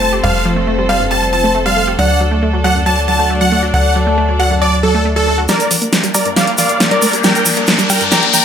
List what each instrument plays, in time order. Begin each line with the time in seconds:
Already playing: analog synth bass F1, string section F3 A3 C4 A4 C5, soft synth lead C5, grand piano A5, supersaw synth A5
0.02 synth arpeggio sound A3
0.13 synth arpeggio sound G4
0.23 analog synth bass F1, synth arpeggio sound G3, soft synth lead C5, grand piano F5, supersaw synth F5
0.45 synth arpeggio sound F3
0.56 synth arpeggio sound A3
0.67 synth arpeggio sound A3
0.78 synth arpeggio sound G3
0.89 synth arpeggio sound G3, supersaw synth F5, grand piano F5
1.00 synth arpeggio sound G2
1.11 synth arpeggio sound G3, supersaw synth A5, grand piano A5
1.33 synth arpeggio sound F3, supersaw synth A5, grand piano A5
1.44 synth arpeggio sound A3
1.55 synth arpeggio sound A3
1.66 synth arpeggio sound G3, supersaw synth F5, grand piano F5
1.77 synth arpeggio sound A3
1.88 synth arpeggio sound G4
1.98 analog synth bass D2, string section F#3 A3 D4 D5, synth arpeggio sound F#3, soft synth lead D5, supersaw synth F#5, grand piano F#5
2.21 synth arpeggio sound F#3
2.31 synth arpeggio sound A3
2.43 synth arpeggio sound A3
2.54 synth arpeggio sound F#3
2.64 synth arpeggio sound F#3, supersaw synth F#5, grand piano F#5
2.75 synth arpeggio sound F#2
2.86 synth arpeggio sound F#3, supersaw synth A5, grand piano A5
3.08 synth arpeggio sound F#3, soft synth lead F#5, grand piano A5, supersaw synth A5
3.19 synth arpeggio sound A3
3.30 synth arpeggio sound A3
3.41 synth arpeggio sound F#3, supersaw synth F#5, grand piano F#5
3.52 synth arpeggio sound A3
3.63 synth arpeggio sound F#4
3.74 analog synth bass D2, synth arpeggio sound F#3, supersaw synth F#5, grand piano F#5, soft synth lead A5
3.96 synth arpeggio sound F#3
4.07 synth arpeggio sound A3
4.18 synth arpeggio sound A3
4.29 synth arpeggio sound F#3
4.39 synth arpeggio sound F#3, grand piano F#5, supersaw synth F#5
4.51 synth arpeggio sound F#2
4.61 synth arpeggio sound F#3, grand piano D5, supersaw synth D5
4.83 synth arpeggio sound F#3, supersaw synth A4, grand piano A4
4.94 synth arpeggio sound A3
5.05 synth arpeggio sound A3
5.16 synth arpeggio sound F#3, supersaw synth A4, grand piano A4
5.27 synth arpeggio sound A3
5.38 synth arpeggio sound F#4
5.48 string section G3 A#3 D4 A#4 D5, synth arpeggio sound G3, supersaw synth A#4 D5, grand piano D5, snare, closed hi-hat, riser, shaker
5.60 closed hi-hat, shaker
5.71 synth arpeggio sound F3, open hi-hat, shaker
5.82 synth arpeggio sound A#3, closed hi-hat, shaker
5.93 synth arpeggio sound A#3, snare, closed hi-hat, shaker
6.04 synth arpeggio sound G3, closed hi-hat, shaker
6.14 synth arpeggio sound G3, supersaw synth A#4 D5, grand piano D5, open hi-hat, shaker
6.25 synth arpeggio sound G2, closed hi-hat, shaker
6.36 synth arpeggio sound G3, supersaw synth D5 F5, grand piano F5, snare, closed hi-hat, shaker
6.47 closed hi-hat
6.58 synth arpeggio sound F3, supersaw synth D5 F5, grand piano F5, open hi-hat, shaker
6.69 synth arpeggio sound A#3, closed hi-hat, shaker
6.80 synth arpeggio sound A#3, snare, closed hi-hat, shaker
6.91 synth arpeggio sound G3, supersaw synth A#4 D5, grand piano D5, closed hi-hat
7.02 synth arpeggio sound A3, open hi-hat, shaker
7.13 synth arpeggio sound G4, closed hi-hat, shaker
7.23 synth arpeggio sound G3, supersaw synth A#4 G5, grand piano G5, snare, closed hi-hat, shaker
7.35 closed hi-hat, shaker
7.45 synth arpeggio sound F3, open hi-hat, shaker
7.56 synth arpeggio sound A#3, closed hi-hat, shaker
7.67 synth arpeggio sound A#3, snare, closed hi-hat, shaker
7.78 synth arpeggio sound G3, closed hi-hat, shaker
7.90 synth arpeggio sound G3, supersaw synth A#4 G5, grand piano G5, open hi-hat, shaker
8.01 synth arpeggio sound G2, closed hi-hat, shaker
8.11 synth arpeggio sound G3, supersaw synth G5 A#5, grand piano A#5, snare, closed hi-hat, shaker
8.23 closed hi-hat
8.33 synth arpeggio sound F3, supersaw synth G5 A#5, grand piano A#5, open hi-hat, shaker